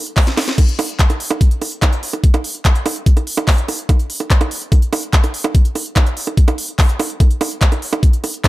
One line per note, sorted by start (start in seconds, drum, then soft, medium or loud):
0.06 closed hi-hat soft
0.17 kick loud
0.17 clap loud
0.17 open hi-hat medium
0.27 snare medium
0.27 closed hi-hat soft
0.37 snare medium
0.37 open hi-hat loud
0.37 high bongo medium
0.48 snare medium
0.48 closed hi-hat soft
0.58 kick loud
0.58 closed hi-hat medium
0.58 crash loud
0.58 high bongo soft
0.68 closed hi-hat soft
0.79 open hi-hat loud
0.79 high bongo medium
0.89 closed hi-hat soft
0.99 kick loud
0.99 clap loud
0.99 closed hi-hat medium
1.10 closed hi-hat soft
1.10 high bongo soft
1.20 open hi-hat loud
1.30 closed hi-hat soft
1.30 high bongo medium
1.41 kick loud
1.41 closed hi-hat medium
1.51 closed hi-hat soft
1.62 open hi-hat loud
1.62 high bongo soft
1.72 closed hi-hat soft
1.82 kick loud
1.82 clap loud
1.82 closed hi-hat medium
1.82 high bongo medium
1.93 closed hi-hat soft
2.03 open hi-hat loud
2.13 closed hi-hat soft
2.13 high bongo soft
2.24 kick loud
2.24 closed hi-hat medium
2.34 closed hi-hat soft
2.34 high bongo medium
2.44 open hi-hat loud
2.55 closed hi-hat soft
2.65 kick loud
2.65 clap loud
2.65 closed hi-hat medium
2.65 high bongo soft
2.75 closed hi-hat soft
2.86 open hi-hat loud
2.86 high bongo medium
2.96 closed hi-hat soft
3.06 kick loud
3.06 closed hi-hat medium
3.17 closed hi-hat soft
3.17 high bongo soft
3.27 open hi-hat loud
3.37 closed hi-hat soft
3.37 high bongo medium
3.48 kick loud
3.48 clap loud
3.48 open hi-hat medium
3.58 closed hi-hat soft
3.68 open hi-hat loud
3.68 high bongo soft
3.79 closed hi-hat soft
3.89 kick loud
3.89 closed hi-hat medium
3.89 high bongo medium
3.99 closed hi-hat soft
4.10 open hi-hat loud
4.20 closed hi-hat soft
4.20 high bongo soft
4.30 kick loud
4.30 clap loud
4.30 closed hi-hat medium
4.41 closed hi-hat soft
4.41 high bongo medium
4.51 open hi-hat loud
4.62 closed hi-hat soft
4.72 kick loud
4.72 closed hi-hat medium
4.72 high bongo soft
4.82 closed hi-hat soft
4.93 open hi-hat loud
4.93 high bongo medium
5.03 closed hi-hat soft
5.13 kick loud
5.13 clap loud
5.13 closed hi-hat medium
5.24 closed hi-hat soft
5.24 high bongo soft
5.34 open hi-hat loud
5.44 closed hi-hat soft
5.44 high bongo medium
5.55 kick loud
5.55 closed hi-hat medium
5.65 closed hi-hat soft
5.75 open hi-hat loud
5.75 high bongo soft
5.86 closed hi-hat soft
5.96 kick loud
5.96 clap loud
5.96 closed hi-hat medium
5.96 high bongo medium
6.06 closed hi-hat soft
6.17 open hi-hat loud
6.27 closed hi-hat soft
6.27 high bongo soft
6.37 kick loud
6.37 closed hi-hat medium
6.48 closed hi-hat soft
6.48 high bongo medium
6.58 open hi-hat loud
6.68 closed hi-hat soft
6.79 kick loud
6.79 clap loud
6.79 open hi-hat medium
6.79 high bongo soft
6.89 closed hi-hat soft
7.00 open hi-hat loud
7.00 high bongo medium
7.10 closed hi-hat soft
7.20 kick loud
7.20 closed hi-hat medium
7.20 high bongo soft
7.31 closed hi-hat soft
7.41 open hi-hat loud
7.41 high bongo medium
7.51 closed hi-hat soft
7.62 kick loud
7.62 clap loud
7.62 closed hi-hat medium
7.72 closed hi-hat soft
7.72 high bongo soft
7.82 open hi-hat loud
7.93 closed hi-hat soft
7.93 high bongo medium
8.03 kick loud
8.03 closed hi-hat medium
8.13 closed hi-hat soft
8.24 open hi-hat loud
8.24 high bongo soft
8.34 closed hi-hat soft
8.44 kick loud
8.44 clap loud
8.44 closed hi-hat medium
8.44 high bongo medium